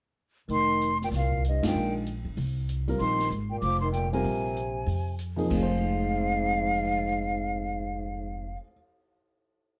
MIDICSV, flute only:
0, 0, Header, 1, 2, 480
1, 0, Start_track
1, 0, Key_signature, -4, "minor"
1, 0, Tempo, 313152
1, 757, Time_signature, 4, 2, 24, 8
1, 15011, End_track
2, 0, Start_track
2, 0, Title_t, "Flute"
2, 0, Program_c, 0, 73
2, 794, Note_on_c, 0, 84, 100
2, 1501, Note_off_c, 0, 84, 0
2, 1595, Note_on_c, 0, 79, 77
2, 1664, Note_off_c, 0, 79, 0
2, 1783, Note_on_c, 0, 77, 69
2, 2200, Note_off_c, 0, 77, 0
2, 2274, Note_on_c, 0, 75, 70
2, 2516, Note_off_c, 0, 75, 0
2, 2554, Note_on_c, 0, 79, 68
2, 2974, Note_off_c, 0, 79, 0
2, 4598, Note_on_c, 0, 84, 93
2, 5045, Note_off_c, 0, 84, 0
2, 5370, Note_on_c, 0, 79, 76
2, 5512, Note_off_c, 0, 79, 0
2, 5521, Note_on_c, 0, 86, 99
2, 5815, Note_off_c, 0, 86, 0
2, 5835, Note_on_c, 0, 84, 73
2, 6002, Note_off_c, 0, 84, 0
2, 6011, Note_on_c, 0, 79, 79
2, 6301, Note_off_c, 0, 79, 0
2, 6328, Note_on_c, 0, 80, 78
2, 7892, Note_off_c, 0, 80, 0
2, 8484, Note_on_c, 0, 77, 91
2, 13149, Note_off_c, 0, 77, 0
2, 15011, End_track
0, 0, End_of_file